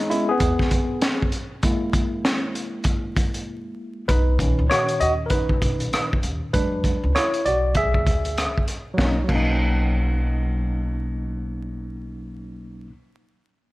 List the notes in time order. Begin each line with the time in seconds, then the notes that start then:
Already playing: D#4
0.00 closed hi-hat
0.10 G#3 B3 C#4 E4, closed hi-hat
0.29 B3 G#4
0.40 E2, kick, closed hi-hat
0.59 kick, snare
0.71 kick, closed hi-hat
1.01 snare, closed hi-hat
1.22 kick
1.32 closed hi-hat
1.63 G#3 A#3 E4, kick, closed hi-hat
1.93 kick, closed hi-hat
2.25 snare, closed hi-hat
2.55 closed hi-hat
2.84 kick, closed hi-hat
3.17 kick, closed hi-hat
3.34 closed hi-hat
4.08 B1 D#4 B4, kick, closed hi-hat
4.39 A#2 D#3 C#4, kick, closed hi-hat
4.59 C#2
4.70 F#4 C#5, cross-stick, closed hi-hat
4.88 closed hi-hat
5.00 D#2 F#4 D#5, closed hi-hat
5.26 A#4, closed hi-hat
5.30 D#4 B4, kick
5.49 kick
5.62 B1, kick, closed hi-hat
5.80 closed hi-hat
5.93 cross-stick, closed hi-hat
6.13 kick
6.23 D#2, closed hi-hat
6.53 E2 F#3 G#3 D4 B4, kick, closed hi-hat
6.84 kick, closed hi-hat
7.04 C#2
7.15 E4 C#5, cross-stick, closed hi-hat
7.34 closed hi-hat
7.46 B1 F#4 D5, closed hi-hat
7.75 G#4 E5, kick, closed hi-hat
7.94 kick
8.07 D2, kick, closed hi-hat
8.25 closed hi-hat
8.38 cross-stick, closed hi-hat
8.58 kick
8.68 cross-stick, closed hi-hat
8.94 F#3 A#3
8.98 B1 C#4, kick, snare
9.05 D#4
9.24 F#3 A#3
9.29 B1 C#4, kick, crash
9.35 D#4